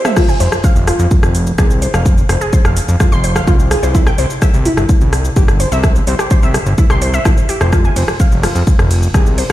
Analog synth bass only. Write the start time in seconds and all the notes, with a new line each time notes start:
0.40 F1
0.76 F1
1.00 F2
1.23 F1
1.58 C2
1.94 F1
2.29 F1
2.65 F1
2.89 F2
3.12 F1
3.47 C2
3.83 C2
4.18 C2
4.54 C2
4.78 G1
5.01 C2
5.37 G1
5.72 C2
6.07 C2
6.43 C2
6.66 G1
6.90 C2
7.25 A#1
7.61 F1
7.96 F1
8.32 F1
8.55 F2
8.79 F1
9.14 C2